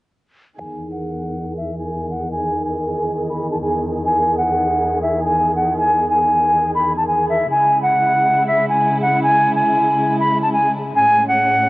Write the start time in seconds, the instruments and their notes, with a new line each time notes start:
0.59 string section E2 D#3 G#4, flute G#5
0.92 flute F#5
1.57 flute E5
1.78 flute G#5
2.10 flute F#5
2.32 flute G#5
2.65 flute G#5
3.29 flute B5
3.51 flute A5
3.62 flute G#5
4.05 flute G#5
4.38 flute F#5
5.02 flute E5
5.24 flute G#5
5.56 flute F#5
5.77 flute G#5
6.10 flute G#5
6.75 flute B5
6.97 flute A5
7.07 flute G#5
7.29 flute E5
7.50 string section C#3 G#3 E4, flute G#5
7.82 flute F#5
8.47 flute E5
8.69 flute G#5
9.01 flute F#5
9.23 flute G#5
9.55 flute G#5
10.20 flute B5
10.42 flute A5
10.53 flute G#5
10.96 string section A2 C#4, flute G#5
11.28 flute F#5